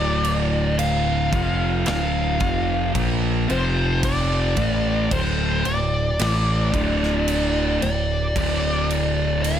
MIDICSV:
0, 0, Header, 1, 5, 480
1, 0, Start_track
1, 0, Key_signature, -1, "minor"
1, 0, Tempo, 1081081
1, 1791, Time_signature, 4, 2, 24, 8
1, 4261, End_track
2, 0, Start_track
2, 0, Title_t, "Lead electric guitar"
2, 0, Program_c, 0, 29
2, 0, Note_on_c, 0, 74, 87
2, 349, Note_off_c, 0, 74, 0
2, 351, Note_on_c, 0, 77, 105
2, 827, Note_off_c, 0, 77, 0
2, 832, Note_on_c, 0, 77, 87
2, 1294, Note_off_c, 0, 77, 0
2, 1558, Note_on_c, 0, 72, 78
2, 1778, Note_off_c, 0, 72, 0
2, 1797, Note_on_c, 0, 74, 78
2, 2274, Note_on_c, 0, 72, 87
2, 2288, Note_off_c, 0, 74, 0
2, 2511, Note_on_c, 0, 74, 94
2, 2519, Note_off_c, 0, 72, 0
2, 3469, Note_off_c, 0, 74, 0
2, 3474, Note_on_c, 0, 74, 97
2, 4185, Note_off_c, 0, 74, 0
2, 4187, Note_on_c, 0, 77, 106
2, 4261, Note_off_c, 0, 77, 0
2, 4261, End_track
3, 0, Start_track
3, 0, Title_t, "Distorted electric guitar"
3, 0, Program_c, 1, 30
3, 0, Note_on_c, 1, 38, 102
3, 0, Note_on_c, 1, 45, 102
3, 0, Note_on_c, 1, 50, 96
3, 581, Note_off_c, 1, 38, 0
3, 583, Note_off_c, 1, 45, 0
3, 583, Note_off_c, 1, 50, 0
3, 587, Note_on_c, 1, 41, 98
3, 592, Note_on_c, 1, 48, 101
3, 593, Note_on_c, 1, 53, 110
3, 822, Note_off_c, 1, 41, 0
3, 824, Note_off_c, 1, 48, 0
3, 825, Note_off_c, 1, 53, 0
3, 829, Note_on_c, 1, 38, 83
3, 833, Note_on_c, 1, 45, 97
3, 836, Note_on_c, 1, 50, 109
3, 1063, Note_off_c, 1, 38, 0
3, 1065, Note_off_c, 1, 45, 0
3, 1066, Note_off_c, 1, 50, 0
3, 1067, Note_on_c, 1, 41, 83
3, 1071, Note_on_c, 1, 48, 90
3, 1074, Note_on_c, 1, 53, 92
3, 1302, Note_off_c, 1, 41, 0
3, 1304, Note_off_c, 1, 48, 0
3, 1305, Note_off_c, 1, 53, 0
3, 1307, Note_on_c, 1, 46, 86
3, 1311, Note_on_c, 1, 53, 103
3, 1313, Note_on_c, 1, 58, 94
3, 1542, Note_off_c, 1, 46, 0
3, 1544, Note_off_c, 1, 53, 0
3, 1545, Note_off_c, 1, 58, 0
3, 1546, Note_on_c, 1, 41, 83
3, 1550, Note_on_c, 1, 48, 91
3, 1552, Note_on_c, 1, 53, 97
3, 2021, Note_off_c, 1, 41, 0
3, 2023, Note_off_c, 1, 48, 0
3, 2024, Note_off_c, 1, 53, 0
3, 2026, Note_on_c, 1, 45, 85
3, 2029, Note_on_c, 1, 52, 82
3, 2032, Note_on_c, 1, 57, 101
3, 2261, Note_off_c, 1, 45, 0
3, 2263, Note_off_c, 1, 52, 0
3, 2264, Note_off_c, 1, 57, 0
3, 2267, Note_on_c, 1, 38, 88
3, 2270, Note_on_c, 1, 45, 101
3, 2273, Note_on_c, 1, 50, 109
3, 2501, Note_off_c, 1, 38, 0
3, 2503, Note_off_c, 1, 45, 0
3, 2505, Note_off_c, 1, 50, 0
3, 2509, Note_on_c, 1, 38, 71
3, 2509, Note_on_c, 1, 45, 71
3, 2701, Note_off_c, 1, 38, 0
3, 2701, Note_off_c, 1, 45, 0
3, 2750, Note_on_c, 1, 45, 95
3, 2753, Note_on_c, 1, 52, 99
3, 2756, Note_on_c, 1, 57, 108
3, 2983, Note_off_c, 1, 45, 0
3, 2984, Note_off_c, 1, 52, 0
3, 2986, Note_off_c, 1, 57, 0
3, 2987, Note_on_c, 1, 38, 95
3, 2991, Note_on_c, 1, 45, 90
3, 2995, Note_on_c, 1, 50, 104
3, 3461, Note_off_c, 1, 38, 0
3, 3463, Note_off_c, 1, 45, 0
3, 3465, Note_off_c, 1, 50, 0
3, 3470, Note_on_c, 1, 38, 54
3, 3472, Note_on_c, 1, 45, 67
3, 3661, Note_off_c, 1, 38, 0
3, 3663, Note_off_c, 1, 45, 0
3, 3712, Note_on_c, 1, 38, 104
3, 3714, Note_on_c, 1, 45, 107
3, 3717, Note_on_c, 1, 50, 112
3, 4261, Note_off_c, 1, 38, 0
3, 4261, Note_off_c, 1, 45, 0
3, 4261, Note_off_c, 1, 50, 0
3, 4261, End_track
4, 0, Start_track
4, 0, Title_t, "Picked electric bass"
4, 0, Program_c, 2, 34
4, 0, Note_on_c, 2, 26, 95
4, 571, Note_off_c, 2, 26, 0
4, 588, Note_on_c, 2, 29, 88
4, 813, Note_off_c, 2, 29, 0
4, 830, Note_on_c, 2, 26, 94
4, 1054, Note_off_c, 2, 26, 0
4, 1068, Note_on_c, 2, 29, 99
4, 1292, Note_off_c, 2, 29, 0
4, 1310, Note_on_c, 2, 34, 84
4, 1534, Note_off_c, 2, 34, 0
4, 1555, Note_on_c, 2, 29, 94
4, 2015, Note_off_c, 2, 29, 0
4, 2029, Note_on_c, 2, 33, 92
4, 2253, Note_off_c, 2, 33, 0
4, 2270, Note_on_c, 2, 26, 102
4, 2493, Note_off_c, 2, 26, 0
4, 2513, Note_on_c, 2, 26, 80
4, 2735, Note_off_c, 2, 26, 0
4, 2753, Note_on_c, 2, 33, 88
4, 2975, Note_off_c, 2, 33, 0
4, 2990, Note_on_c, 2, 26, 98
4, 3452, Note_off_c, 2, 26, 0
4, 3474, Note_on_c, 2, 26, 76
4, 3695, Note_off_c, 2, 26, 0
4, 3710, Note_on_c, 2, 26, 102
4, 4261, Note_off_c, 2, 26, 0
4, 4261, End_track
5, 0, Start_track
5, 0, Title_t, "Drums"
5, 109, Note_on_c, 9, 49, 59
5, 153, Note_off_c, 9, 49, 0
5, 350, Note_on_c, 9, 49, 75
5, 394, Note_off_c, 9, 49, 0
5, 589, Note_on_c, 9, 36, 111
5, 590, Note_on_c, 9, 49, 61
5, 633, Note_off_c, 9, 36, 0
5, 634, Note_off_c, 9, 49, 0
5, 825, Note_on_c, 9, 49, 73
5, 835, Note_on_c, 9, 38, 117
5, 869, Note_off_c, 9, 49, 0
5, 879, Note_off_c, 9, 38, 0
5, 1067, Note_on_c, 9, 49, 53
5, 1069, Note_on_c, 9, 36, 108
5, 1111, Note_off_c, 9, 49, 0
5, 1113, Note_off_c, 9, 36, 0
5, 1310, Note_on_c, 9, 36, 99
5, 1310, Note_on_c, 9, 49, 73
5, 1354, Note_off_c, 9, 36, 0
5, 1355, Note_off_c, 9, 49, 0
5, 1552, Note_on_c, 9, 49, 51
5, 1597, Note_off_c, 9, 49, 0
5, 1789, Note_on_c, 9, 49, 87
5, 1790, Note_on_c, 9, 36, 115
5, 1834, Note_off_c, 9, 36, 0
5, 1834, Note_off_c, 9, 49, 0
5, 2027, Note_on_c, 9, 49, 64
5, 2030, Note_on_c, 9, 36, 105
5, 2072, Note_off_c, 9, 49, 0
5, 2074, Note_off_c, 9, 36, 0
5, 2270, Note_on_c, 9, 49, 80
5, 2271, Note_on_c, 9, 36, 113
5, 2315, Note_off_c, 9, 36, 0
5, 2315, Note_off_c, 9, 49, 0
5, 2509, Note_on_c, 9, 49, 63
5, 2554, Note_off_c, 9, 49, 0
5, 2750, Note_on_c, 9, 49, 85
5, 2760, Note_on_c, 9, 38, 117
5, 2795, Note_off_c, 9, 49, 0
5, 2805, Note_off_c, 9, 38, 0
5, 2991, Note_on_c, 9, 36, 94
5, 2992, Note_on_c, 9, 49, 62
5, 3035, Note_off_c, 9, 36, 0
5, 3037, Note_off_c, 9, 49, 0
5, 3122, Note_on_c, 9, 38, 31
5, 3166, Note_off_c, 9, 38, 0
5, 3231, Note_on_c, 9, 49, 77
5, 3275, Note_off_c, 9, 49, 0
5, 3473, Note_on_c, 9, 49, 57
5, 3517, Note_off_c, 9, 49, 0
5, 3711, Note_on_c, 9, 36, 115
5, 3713, Note_on_c, 9, 49, 87
5, 3756, Note_off_c, 9, 36, 0
5, 3758, Note_off_c, 9, 49, 0
5, 3954, Note_on_c, 9, 49, 58
5, 3998, Note_off_c, 9, 49, 0
5, 4193, Note_on_c, 9, 49, 77
5, 4237, Note_off_c, 9, 49, 0
5, 4261, End_track
0, 0, End_of_file